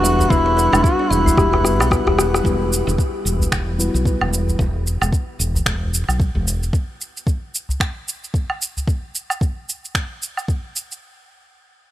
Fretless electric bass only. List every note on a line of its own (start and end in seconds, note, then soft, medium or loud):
0.00 0.26 E1 medium
0.30 0.67 E1 loud
0.73 0.81 E1 loud
1.10 1.32 E1 medium
1.37 1.80 E1 medium
1.80 2.00 B1 medium
2.07 2.41 E1 medium
2.45 2.82 E1 loud
2.87 2.96 E1 loud
3.25 3.47 E1 medium
3.52 3.89 E1 medium
3.94 4.14 B1 medium
4.21 4.55 E1 medium
4.59 4.96 E1 medium
5.01 5.10 E1 medium
5.39 5.61 E1 medium
5.66 6.03 E1 loud
6.08 6.28 B1 medium
6.35 6.69 E1 medium